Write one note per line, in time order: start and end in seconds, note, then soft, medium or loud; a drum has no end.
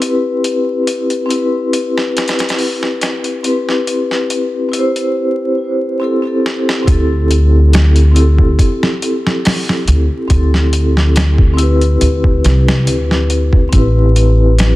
0.00 1.23 C4 medium
0.00 1.24 E4 medium
0.00 1.26 G4 medium
0.00 closed hi-hat medium
0.06 1.27 B4 medium
0.44 closed hi-hat medium
0.87 closed hi-hat medium
1.10 closed hi-hat soft
1.26 3.37 C4 medium
1.26 3.39 E4 medium
1.30 3.40 G4 medium
1.30 closed hi-hat medium
1.35 3.42 B4 medium
1.73 closed hi-hat medium
1.98 snare soft
2.17 snare medium
2.17 closed hi-hat medium
2.28 snare medium
2.28 closed hi-hat medium
2.39 snare medium
2.39 closed hi-hat medium
2.49 snare medium
2.49 closed hi-hat medium
2.59 open hi-hat medium
2.83 snare soft
3.02 snare medium
3.02 closed hi-hat medium
3.24 closed hi-hat soft
3.43 3.67 C4 medium
3.43 3.67 E4 medium
3.43 3.68 G4 medium
3.43 closed hi-hat medium
3.47 3.69 B4 medium
3.69 snare soft
3.87 closed hi-hat medium
4.11 snare soft
4.30 closed hi-hat medium
4.69 5.95 C4 medium
4.69 5.97 E4 medium
4.73 5.98 G4 medium
4.73 closed hi-hat medium
4.78 6.00 C5 medium
4.96 closed hi-hat soft
6.00 6.18 C4 medium
6.00 6.19 E4 medium
6.00 6.19 G4 medium
6.04 6.20 A4 medium
6.22 6.81 C4 medium
6.22 6.82 E4 medium
6.22 6.83 G4 medium
6.27 6.84 A4 medium
6.46 snare medium
6.69 snare medium
6.83 8.09 C4 medium
6.83 8.10 E4 medium
6.87 8.55 D2 medium
6.87 8.12 G4 medium
6.87 kick loud
6.87 closed hi-hat medium
6.92 8.13 A4 loud
7.31 closed hi-hat medium
7.73 snare loud
7.73 closed hi-hat medium
7.96 closed hi-hat soft
8.11 10.23 C4 medium
8.11 10.24 E4 medium
8.16 10.26 G4 medium
8.16 closed hi-hat medium
8.20 10.27 A4 medium
8.39 kick medium
8.59 kick loud
8.59 closed hi-hat medium
8.83 snare medium
9.02 closed hi-hat medium
9.27 snare soft
9.45 snare loud
9.45 open hi-hat medium
9.69 snare soft
9.88 10.07 D2 medium
9.88 closed hi-hat medium
10.28 11.98 D2 loud
10.28 10.52 C4 medium
10.28 10.53 E4 medium
10.28 10.53 G4 medium
10.28 kick loud
10.28 closed hi-hat medium
10.33 10.54 A4 medium
10.54 snare soft
10.73 closed hi-hat medium
10.97 snare soft
11.16 snare loud
11.16 closed hi-hat medium
11.38 kick loud
11.54 13.66 C4 medium
11.54 13.67 E4 medium
11.58 13.69 G4 medium
11.58 closed hi-hat medium
11.63 13.70 B4 medium
11.81 closed hi-hat soft
12.01 12.39 D2 medium
12.01 closed hi-hat medium
12.24 kick loud
12.44 12.88 C2 medium
12.44 snare soft
12.44 closed hi-hat medium
12.68 snare loud
12.87 13.69 D2 medium
12.87 closed hi-hat medium
13.11 snare soft
13.30 closed hi-hat medium
13.53 kick medium
13.69 14.76 C4 medium
13.69 14.76 E4 medium
13.69 kick loud
13.69 closed hi-hat medium
13.73 14.76 A1 medium
13.73 14.76 G4 medium
13.78 14.76 B4 loud
14.16 closed hi-hat medium
14.58 snare loud
14.58 closed hi-hat medium